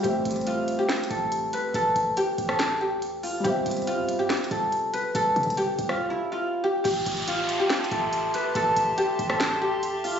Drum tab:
CC |------------------------------------------------------------------------------------------------|------------------------------------------------------------------------------------------------|------------------------------------------------------------------------------------------------|------------------------------------------------------------------------------------------------|
HH |x-----------x--x--x--x--x-----------x-----------x---x---x---x-----------x-----------x-----------|x-----------x-----------x-----------x-----------x-----------------------x-----------o-----------|x-----------x--x--x--x--x-----------x-----------x---x---x---x-----------x-----------x-----------|x-----------x---x---x---x-----------x-----------------------------------------------------------|
CP |------------------------------------------------x-----------------------------------------------|------------------------------------------------x-----------------------------------------------|------------------------------------------------x-----------------------------------------------|------------------------------------------------------------------------------------------------|
SD |------------------------------------------------o-----------------------------------------------|------------------------------------------r-----o-----------------------------------------------|------------------------------------------------o-----------------------------------------------|------------------------------------------r-----------------------------------------------------|

CC |x-----------------------------------------------------------------------------------------------|------------------------------------------------------------------------------------------------|
HH |x-----------x--x--x--x--x-----------x-----------x---x---x---x-----------x-----------x-----------|x-----------x-----------x-----------x-----------x-----------------------x-----------o-----------|
CP |------------------------------------------------x-----------------------------------------------|------------------------------------------------x-----------------------------------------------|
SD |------------------------------------------------o-----------------------------------------------|------------------------------------------r-----o-----------------------------------------------|